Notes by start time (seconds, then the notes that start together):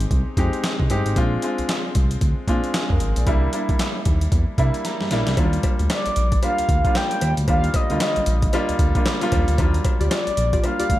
Already playing: G#3 C4 D#4 G4
0.00 closed hi-hat
0.11 C2, kick, closed hi-hat
0.37 F2 G#3 C4 D#4 G4, kick, closed hi-hat
0.53 closed hi-hat
0.64 snare, clap, closed hi-hat
0.80 C2, kick
0.90 G1 G#3 C4 D#4 G4, closed hi-hat
1.06 G#1, closed hi-hat
1.16 A#1 G#3 C4 D4 F4, kick, closed hi-hat
1.42 G#3 C4 D4 F4, closed hi-hat
1.58 C2, closed hi-hat
1.69 snare, clap, closed hi-hat
1.95 C2, kick, closed hi-hat
2.11 closed hi-hat
2.21 D2, kick, closed hi-hat
2.48 A#2 G#3 C4 D4 F4, kick, closed hi-hat
2.64 closed hi-hat
2.74 D4 G#4, snare, clap, closed hi-hat
2.90 F2 F4 A#4, kick
3.00 G#1, closed hi-hat
3.16 A#1 G#4 D5, closed hi-hat
3.27 C2 G3 A#3 D4 E4, kick, closed hi-hat
3.53 G3 A#3 D4 E4, closed hi-hat
3.69 D#2, kick, closed hi-hat
3.79 snare, clap, closed hi-hat
4.05 D#2, kick, closed hi-hat
4.21 closed hi-hat
4.32 E2, kick, closed hi-hat
4.58 C3 G3 A#3 D4 E4 E5, kick, closed hi-hat
4.74 closed hi-hat
4.85 A#5, snare, closed hi-hat
5.01 G2, snare
5.11 A#1 G3 A#3 D4 E4, snare, closed hi-hat
5.27 C2, snare, closed hi-hat
5.37 D#2 F#3 A#3 D4 F4, kick, closed hi-hat, cowbell
5.44 G3
5.53 closed hi-hat
5.63 kick, closed hi-hat, cowbell
5.79 D2, closed hi-hat
5.90 D5, snare, clap, closed hi-hat, cowbell
6.06 A#1, closed hi-hat
6.16 A#1, closed hi-hat
6.32 kick, closed hi-hat
6.43 G3 A#3 D4 F4 F5, closed hi-hat, cowbell
6.58 D2, closed hi-hat
6.69 D2, kick, closed hi-hat
6.85 G3 A#3 D4 F4, kick, closed hi-hat
6.95 G5, snare, clap, closed hi-hat, cowbell
7.11 closed hi-hat
7.21 D#2 G5, closed hi-hat, cowbell
7.37 D2, closed hi-hat
7.48 D#2 G3 A#3 D4 F4 F5, kick, closed hi-hat, cowbell
7.64 closed hi-hat
7.74 D#5, kick, closed hi-hat, cowbell
7.90 D2 D3 G3 A#3 F4, closed hi-hat
8.00 snare, clap, closed hi-hat, cowbell
8.16 A#1, closed hi-hat
8.26 A#1, closed hi-hat
8.42 kick, closed hi-hat
8.53 G3 A#3 D4 F4, closed hi-hat, cowbell
8.69 D2, closed hi-hat
8.79 D2, kick, closed hi-hat
8.95 G3 A#3 D4 F4, kick, closed hi-hat
9.06 snare, clap, closed hi-hat, cowbell
9.21 G3 A#3 D4 F4, closed hi-hat
9.32 D#2, kick, closed hi-hat, cowbell
9.48 D2, closed hi-hat
9.58 D#2 F#3 A#3 D4 F4, kick, closed hi-hat, cowbell
9.65 G3
9.74 closed hi-hat
9.85 kick, closed hi-hat, cowbell
10.00 D2 F4 G4 D5, closed hi-hat
10.07 F4 G4 C#5, closed hi-hat
10.11 D5, snare, clap, cowbell
10.27 A#1, closed hi-hat
10.37 A#1, closed hi-hat
10.53 F4 G4 D5, kick, closed hi-hat
10.64 G3 A#3 D4 F4 F5, closed hi-hat, cowbell
10.79 D2 F4 G4 D5, closed hi-hat
10.90 D2, kick, closed hi-hat